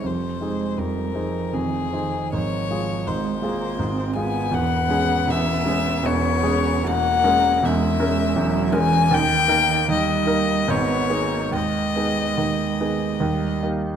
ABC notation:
X:1
M:3/4
L:1/16
Q:1/4=78
K:Fm
V:1 name="Violin"
c4 B4 A4 | d4 c6 a2 | [K:G#m] f4 e4 c4 | f4 e6 g2 |
=g4 d4 c4 | d8- d2 z2 |]
V:2 name="Grand piano"
[F,,,F,,]2 [CEA]2 [F,,,F,,]2 [CEA]2 [F,,,F,,]2 [CEA]2 | [A,,,A,,]2 [A,FA]2 [A,,,A,,]2 [A,FA]2 [A,,,A,,]2 [A,FA]2 | [K:G#m] [E,,,E,,]2 [G,CG]2 [E,,,E,,]2 [G,CG]2 [E,,,E,,]2 [G,CG]2 | [E,,,E,,]2 [G,CA]2 [E,,,E,,]2 [G,CA]2 [E,,,E,,]2 [G,CA]2 |
[D,,D,]2 [A,DA]2 [D,,D,]2 [A,DA]2 [G,,,G,,]2 [B,DG]2 | [D,,D,]2 [B,DG]2 [D,,D,]2 [B,DG]2 [D,,D,]2 [A,D=G]2 |]
V:3 name="Cello" clef=bass
F,2 A,2 G,2 F,2 E,2 E,2 | F,4 A,2 B,2 C2 _C2- | [K:G#m] _C12 | A,4 G,2 G,2 F,2 E,2 |
D,2 D,2 =G,4 B,2 A,2 | G,8 =G,3 z |]